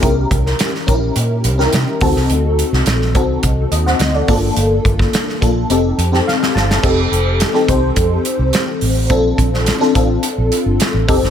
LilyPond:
<<
  \new Staff \with { instrumentName = "FM electric piano" } { \time 4/4 \key bes \major \tempo 4 = 106 << { r1 | r2 r8 <a' ees''>16 <c'' fis''>8 <a' d''>8 r16 | r2. f''8 a''8 | r1 |
r1 | } \\ { <des' e' g' bes'>4~ <des' e' g' bes'>16 r16 <des' ees' e' g' bes'>4 r16 <des' ees' e' g' bes'>8. <c' ees' fis' a'>8~ | <c' ees' fis' a'>4 r8 <c' ees' fis' a'>4 r4 <bes d' f' a'>8~ | <bes d' f' a'>4 r8 <bes d' f' a'>8 <c' ees' g' a'>8 r16 <c' ees' g' a'>4 r16 | <c' ees' g' a'>4 r16 <c' ees' g' a'>16 <c' ees' g' c''>4. r4 |
<c' d' f' a'>4 r16 <c' d' f' a'>16 <c' d' f' a'>4. r8 <c' ees' g' a'>8 | } >> }
  \new Staff \with { instrumentName = "Fingered electric bass" } { \clef bass \time 4/4 \key bes \major c,8 c,8 r8 bes,,8 bes,8 c,8 c16 r16 d,16 c,16 | d,8. c,16 bes,,8 c,8 c,8 ees,8 d,8 g,,8 | g,,8 g,,8 r8 bes,,8 f,,8 f,8 r8 g,,8 | f,,8 f,,8. r16 c,8 f,8 r16 c,16 r8 a,,8 |
bes,,8 bes,,8. r16 a,,8 r16 bes,,16 r16 g,,16 r16 a,,16 f,,16 g,,16 | }
  \new DrumStaff \with { instrumentName = "Drums" } \drummode { \time 4/4 <hh bd>8 <hh bd>16 sn16 <hh sn>16 sn16 <hh bd>8 hh8 hh16 sn16 <hh sn>8 <hho bd>16 sn16 | hh8 hh16 sn16 <hh sn>16 sn16 <hh bd>8 <hh bd>8 hh16 sn16 <hh sn>8 <hho bd>8 | hh8 <hh bd>16 <bd sn>16 <hh sn>16 sn16 <hh bd>8 hh8 hh16 sn16 sn16 sn16 sn16 sn16 | <cymc bd>8 hh8 <hh sn>16 sn16 <hh bd>8 <hh bd>8 hh8 <hh sn>8 hho8 |
<hh bd>8 <hh bd>16 sn16 <hh sn>16 sn16 <hh bd>8 hh8 hh8 <hh sn>8 <hho bd>16 sn16 | }
>>